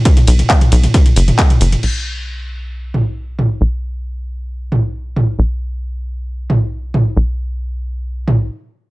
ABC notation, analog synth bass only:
X:1
M:4/4
L:1/8
Q:1/4=135
K:Clyd
V:1 name="Analog synth bass" clef=bass
z B,,, z B,,, z F,,, z F,,, | B,,,8 | B,,,8 | B,,,8 |
B,,,6 z2 |]